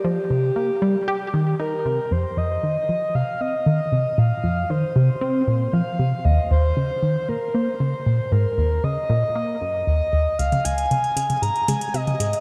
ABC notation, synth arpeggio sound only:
X:1
M:4/4
L:1/8
Q:1/4=116
K:Cdor
V:1 name="Synth arpeggio sound" clef=bass
F, C, B, G, G E, E C, | [K:Fm] F,, F,, E, F, C, C E, C, | B,, F,, E, C, C B,, F, C, | E,, E,, D, E, B,, B, D, B,, |
A,, E,, D, B,, B, _G,, E,, E,, | D,, D,, C, D, A,, A, C, A,, |]